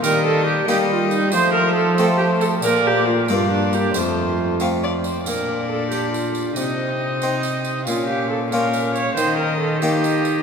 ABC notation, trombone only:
X:1
M:6/8
L:1/8
Q:3/8=92
K:Bb
V:1 name="Trombone"
G,3 G,3 | A,3 A,3 | B,3 B,3 | A,4- A, z |
D6 | C6 | _D3 D3 | E3 E3 |]